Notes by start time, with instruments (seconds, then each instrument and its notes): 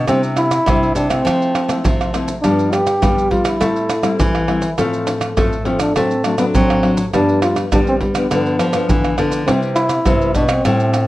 0.08 nylon-string guitar C3 G3 D4 E4, trombone C4, pandeiro, tamborim, maracas, surdo
0.24 pandeiro, maracas
0.37 trombone E4, pandeiro, tamborim, maracas
0.52 pandeiro, tamborim, maracas
0.67 nylon-string guitar C3 G3 D4 E4, pandeiro, tamborim, maracas, surdo
0.83 pandeiro, maracas
0.95 nylon-string guitar C3, trombone D4, pandeiro, maracas
1.09 nylon-string guitar A3 C4 E4, trombone C4, pandeiro, tamborim, maracas
1.25 nylon-string guitar F3, pandeiro, tamborim, maracas, surdo
1.42 pandeiro, maracas
1.55 pandeiro, tamborim, maracas
1.68 nylon-string guitar A3 C4 E4, pandeiro, tamborim, maracas
1.84 nylon-string guitar C3 F3, pandeiro, maracas, surdo
2.01 pandeiro, tamborim, maracas
2.14 nylon-string guitar A3 C4 E4, pandeiro, tamborim, maracas
2.28 pandeiro, maracas
2.42 nylon-string guitar G2 F3 G3 B3 D4, trombone D4, pandeiro, tamborim, maracas, surdo
2.59 pandeiro, maracas
2.72 trombone G4, pandeiro, tamborim, maracas
2.86 pandeiro, tamborim, maracas
3.01 nylon-string guitar D3 F3 G3 B3 D4, pandeiro, tamborim, maracas, surdo
3.18 pandeiro, maracas
3.31 nylon-string guitar G3, trombone F4, pandeiro, surdo
3.45 trombone E4, pandeiro, tamborim, maracas
3.60 nylon-string guitar A2 G3 A3 C4 E4, pandeiro, tamborim, maracas, surdo
3.76 pandeiro, maracas
3.90 pandeiro, tamborim, maracas
4.02 nylon-string guitar G3 C4 E4, pandeiro, tamborim, maracas
4.19 nylon-string guitar E3, pandeiro, maracas, surdo
4.35 pandeiro, tamborim, maracas
4.47 nylon-string guitar G3 C4 E4, pandeiro, tamborim
4.62 pandeiro, maracas
4.78 nylon-string guitar A2 F3 A3 C4 F4, pandeiro, tamborim, maracas, surdo
4.93 pandeiro, maracas
5.07 pandeiro, tamborim, maracas
5.21 pandeiro, tamborim, maracas
5.37 nylon-string guitar A2 F3 A3 C4 F4, pandeiro, tamborim, maracas, surdo
5.53 pandeiro, maracas
5.65 nylon-string guitar F3 A3 C4 F4, trombone C4, pandeiro
5.80 trombone D4, pandeiro, tamborim, maracas
5.96 nylon-string guitar A2 F#3 A3 C4 D4, trombone C4, pandeiro, tamborim, maracas, surdo
6.11 pandeiro, maracas
6.24 nylon-string guitar F#3 C4 D4, trombone A3, pandeiro, tamborim, maracas
6.38 nylon-string guitar F#3 C4 D4, trombone B3, pandeiro, tamborim, maracas
6.55 nylon-string guitar A2 F#3, trombone C4, pandeiro, maracas, surdo
6.70 pandeiro, tamborim, maracas
6.83 nylon-string guitar F#3 C4 D4, pandeiro, tamborim
6.97 pandeiro, maracas
7.13 nylon-string guitar G2 F3 G3 B3 D4, trombone D4, pandeiro, tamborim, maracas, surdo
7.29 pandeiro, maracas
7.42 trombone F4, pandeiro, tamborim, maracas
7.56 pandeiro, tamborim, maracas
7.72 nylon-string guitar D3 F3 G3 B3 D4, trombone D4, pandeiro, tamborim, maracas, surdo
7.87 trombone C4, pandeiro, maracas
8.00 nylon-string guitar G3, trombone B3, pandeiro, surdo
8.15 nylon-string guitar F3 B3 D4, pandeiro, tamborim, maracas
8.31 nylon-string guitar G2 D3 F3 B3 D4, pandeiro, tamborim, maracas, surdo
8.46 pandeiro, maracas
8.60 nylon-string guitar F3, pandeiro, tamborim, maracas
8.73 nylon-string guitar F3 B3 D4, pandeiro, tamborim, maracas
8.89 nylon-string guitar D3 E3, pandeiro, maracas, surdo
9.05 pandeiro, tamborim, maracas
9.17 nylon-string guitar D3 F3 B3 D4, pandeiro, tamborim, maracas
9.32 pandeiro, maracas
9.46 nylon-string guitar C3 G3 B3 E4, trombone C4, pandeiro, tamborim, maracas, surdo
9.63 pandeiro, maracas
9.76 trombone E4, pandeiro, tamborim, maracas
9.90 pandeiro, tamborim, maracas
10.05 nylon-string guitar G2 C3 G3 B3 E4, pandeiro, tamborim, maracas, surdo
10.21 pandeiro, maracas
10.35 nylon-string guitar B2, trombone D4, pandeiro, maracas, surdo
10.49 trombone C4, pandeiro, tamborim, maracas
10.64 nylon-string guitar A2 G3 C4 E4, pandeiro, tamborim, maracas, surdo
10.80 pandeiro, maracas
10.94 pandeiro, tamborim, maracas